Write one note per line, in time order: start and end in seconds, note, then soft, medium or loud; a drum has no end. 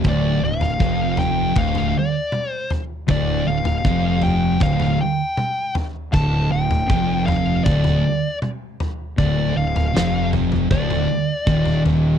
0.04 0.40 D1 medium
0.04 0.41 D2 loud
0.04 kick loud
0.04 floor tom medium
0.08 0.44 D5 medium
0.42 0.79 D1 medium
0.42 0.73 D2 medium
0.42 1.22 F5 medium
0.61 floor tom medium
0.79 1.53 F1 loud
0.79 1.55 F2 medium
0.79 kick medium
1.17 1.58 G5 loud
1.17 floor tom medium
1.56 1.92 D1 medium
1.56 1.93 D2 loud
1.56 1.97 F5 medium
1.56 kick loud
1.56 floor tom medium
1.75 floor tom medium
1.99 2.51 D5 medium
2.32 mid tom medium
2.51 2.69 C5 medium
2.70 floor tom medium
3.08 3.44 D1 medium
3.08 3.45 D2 loud
3.08 3.47 D5 loud
3.08 kick medium
3.08 floor tom medium
3.47 3.82 D1 medium
3.47 3.77 D2 medium
3.47 4.26 F5 medium
3.65 floor tom medium
3.85 4.57 F1 medium
3.85 4.60 F2 loud
3.85 kick medium
4.22 4.62 G5 medium
4.22 floor tom medium
4.60 4.97 D1 medium
4.60 4.98 D2 loud
4.60 4.97 F5 loud
4.60 kick loud
4.60 floor tom medium
4.80 floor tom medium
5.01 5.72 G5 loud
5.37 mid tom medium
5.75 floor tom medium
6.13 6.49 D1 medium
6.13 6.50 D2 loud
6.13 6.52 A5 loud
6.13 kick loud
6.13 floor tom medium
6.51 6.88 D1 medium
6.51 6.82 D2 medium
6.51 7.30 G5 loud
6.71 floor tom medium
6.89 7.62 F1 loud
6.89 7.64 F2 loud
6.89 kick loud
7.26 7.62 F5 medium
7.26 floor tom medium
7.64 8.01 D1 loud
7.64 8.03 D2 loud
7.64 8.37 D5 medium
7.64 kick loud
7.64 floor tom medium
7.84 floor tom medium
8.42 mid tom medium
8.80 floor tom medium
9.18 9.54 D1 medium
9.18 9.55 D2 loud
9.18 9.57 D5 loud
9.18 kick loud
9.18 floor tom medium
9.56 9.92 D1 medium
9.56 9.87 D2 medium
9.56 10.29 F5 medium
9.76 floor tom medium
9.94 10.67 F1 medium
9.94 10.70 F2 loud
9.94 snare medium
10.33 floor tom medium
10.33 mid tom medium
10.52 floor tom medium
10.52 mid tom medium
10.70 11.06 D1 loud
10.70 11.08 D2 loud
10.70 11.81 D5 loud
10.70 kick loud
10.70 floor tom medium
10.90 floor tom medium
11.47 12.19 D#1 medium
11.47 12.19 D#2 loud
11.47 kick loud
11.65 floor tom medium
11.86 floor tom medium